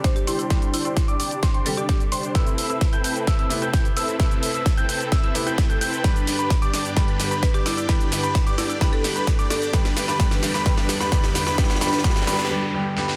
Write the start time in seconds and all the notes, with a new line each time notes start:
Already playing: C3 D3 G3 C4 D4 G4
0.04 D4 G4 C5 D5 D6, kick, snare, closed hi-hat, cabasa
0.16 G4, closed hi-hat, cabasa
0.27 D4 E4 G4 C5 C6, open hi-hat, cabasa
0.39 E4, closed hi-hat, cabasa
0.49 D3 G3 C4 D4 G4 C5 C6, kick, snare, closed hi-hat, cabasa
0.62 closed hi-hat, cabasa
0.74 E4, open hi-hat, cabasa
0.85 D4 E4 G4 C5 C6, cabasa
0.97 kick, snare, closed hi-hat, cabasa
1.08 D4 G4 D5 D6, closed hi-hat, cabasa
1.20 D4 G4 D5 D6, open hi-hat, cabasa
1.31 closed hi-hat, cabasa
1.43 D4 G4 C5 C6, kick, snare, closed hi-hat, cabasa
1.54 D4 G4 C5 C6, closed hi-hat
1.65 D3 G3 C4 G4 A4, open hi-hat, cabasa
1.77 D4 G4 D5 D6, closed hi-hat, cabasa
1.89 D4 G4 D5 D6, kick, snare, closed hi-hat, cabasa
2.00 closed hi-hat, cabasa
2.12 D4 G4 C5 C6, open hi-hat, cabasa
2.23 closed hi-hat, cabasa
2.34 C3 A3 C4 E4 A4 B4 E5 E6, kick, snare, closed hi-hat, cabasa
2.47 closed hi-hat, cabasa
2.58 open hi-hat, cabasa
2.70 C4 E4 A4 B4 E5 E6, closed hi-hat, cabasa
2.81 kick, snare, closed hi-hat, cabasa
2.93 C4 E4 A4 B4 G5 G6, closed hi-hat, cabasa
3.04 C4 E4 A4 B4 G5 G6, open hi-hat, cabasa
3.16 closed hi-hat, cabasa
3.27 C4 E4 A4 B4 E5 E6, kick, snare, closed hi-hat, cabasa
3.39 C4 E4 A4 B4 E5 E6, closed hi-hat
3.49 C3 A3 B3 E4, open hi-hat, cabasa
3.62 C4 E4 A4 B4 G5 G6, closed hi-hat, cabasa
3.73 C4 E4 A4 B4 G5 G6, kick, snare, closed hi-hat, cabasa
3.85 closed hi-hat, cabasa
3.97 C4 E4 A4 B4 E5 E6, open hi-hat, cabasa
4.08 closed hi-hat, cabasa
4.18 C3 A3 C4 E4 A4 B4 E5 E6, kick, snare, closed hi-hat, cabasa
4.31 closed hi-hat, cabasa
4.43 open hi-hat, cabasa
4.54 C4 E4 A4 B4 E5 E6, closed hi-hat, cabasa
4.66 kick, snare, closed hi-hat, cabasa
4.77 C4 E4 A4 B4 G5 G6, closed hi-hat, cabasa
4.89 C4 E4 A4 B4 G5 G6, open hi-hat, cabasa
5.00 closed hi-hat, cabasa
5.12 C4 E4 A4 B4 E5 E6, kick, snare, closed hi-hat, cabasa
5.23 C4 E4 A4 B4 E5 E6, closed hi-hat
5.34 C3 A3 B3 E4, open hi-hat, cabasa
5.46 C4 E4 A4 B4 G5 G6, closed hi-hat, cabasa
5.58 kick, snare, closed hi-hat, cabasa
5.69 C4 E4 A4 B4 G5 G6, closed hi-hat, cabasa
5.81 C4 E4 A4 B4 G5 G6, open hi-hat, cabasa
5.93 closed hi-hat, cabasa
6.03 G2 D3 G3 B3 D4 G4 B4 B5, kick, snare, closed hi-hat, riser, cabasa
6.16 closed hi-hat, cabasa
6.27 snare, open hi-hat, cabasa
6.39 D4 G4 B4 B5, closed hi-hat, cabasa
6.50 kick, snare, closed hi-hat, cabasa
6.62 D4 G4 D5 D6, closed hi-hat, cabasa
6.73 D4 G4 D5 D6, snare, open hi-hat, cabasa
6.85 closed hi-hat, cabasa
6.95 G2 D3 G3 B3 D4 G4 B4 B5, kick, snare, closed hi-hat, cabasa
7.08 closed hi-hat
7.20 snare, open hi-hat, cabasa
7.31 D4 G4 B4 B5, closed hi-hat, cabasa
7.43 B4, kick, snare, closed hi-hat, cabasa
7.54 D4 G4 D5 D6, closed hi-hat, cabasa
7.66 D4 E4 G4 D5 D6, snare, open hi-hat, cabasa
7.77 E4, closed hi-hat, cabasa
7.88 G2 D3 G3 B3 D4 G4 B4 B5, kick, snare, closed hi-hat, cabasa
8.00 closed hi-hat, cabasa
8.12 snare, open hi-hat, cabasa
8.23 D4 G4 B4 B5, cabasa
8.35 kick, snare, closed hi-hat, cabasa
8.46 D4 G4 D5 D6, closed hi-hat, cabasa
8.58 D4 E4 G4 D5 D6, snare, open hi-hat, cabasa
8.69 E4, closed hi-hat, cabasa
8.80 G2 D3 G3 B3 D4 G4 B4 B5, kick, snare, closed hi-hat, cabasa
8.93 A4, closed hi-hat
9.04 G4, snare, open hi-hat, cabasa
9.16 D4 G4 B4 B5, closed hi-hat, cabasa
9.27 kick, snare, closed hi-hat, cabasa
9.39 D4 G4 D5 D6, closed hi-hat, cabasa
9.50 D4 G4 A4 D5 D6, snare, open hi-hat, cabasa
9.62 A4, closed hi-hat, cabasa
9.72 E2 G2 D3 G3 B3 D4 G4 B4 B5, kick, snare, closed hi-hat, cabasa
9.85 snare, closed hi-hat, cabasa
9.97 snare, open hi-hat, cabasa
10.08 D4 G4 B4 B5, snare, closed hi-hat, cabasa
10.19 G2 D3 G3 B3 D4 G4 B4 B5, kick, snare, closed hi-hat, cabasa
10.31 snare, closed hi-hat, cabasa
10.43 snare, open hi-hat, cabasa
10.54 D4 G4 B4 B5, snare, closed hi-hat, cabasa
10.65 G2 D3 G3 B3 D4 G4 B4, kick, snare, closed hi-hat, cabasa
10.77 snare, closed hi-hat
10.89 snare, open hi-hat, cabasa
11.00 D4 G4 B4 B5, snare, closed hi-hat, cabasa
11.11 G2 D3 G3 B3 D4 G4 B4, kick, snare, closed hi-hat, cabasa
11.24 snare, closed hi-hat, cabasa
11.35 snare, open hi-hat, cabasa
11.47 D4 G4 B4 B5, snare, closed hi-hat, cabasa
11.57 G2 D3 G3 B3 D4 G4 B4 B5, kick, snare, closed hi-hat, noise sweep, cabasa
11.64 snare
11.70 snare, closed hi-hat, cabasa
11.75 snare
11.80 G2 D3 G3 B3 D4 G4 B4 B5, snare, open hi-hat, cabasa
11.87 snare
11.93 snare, closed hi-hat, cabasa
11.98 snare
12.03 G2 D3 G3 B3 D4 G4 B4 B5, kick, snare, closed hi-hat, cabasa
12.10 snare
12.16 snare, closed hi-hat, cabasa
12.22 snare
12.26 G2 D3 G3 B3 D4 G4 B4 B5, snare, open hi-hat, cabasa
12.33 snare
12.39 snare, closed hi-hat, cabasa
12.45 snare
12.49 G2 D3 G3 B3 G4
12.73 G2 D3 G3 B3 G4
12.96 G2 D3 G3 B3 G4, snare
13.08 snare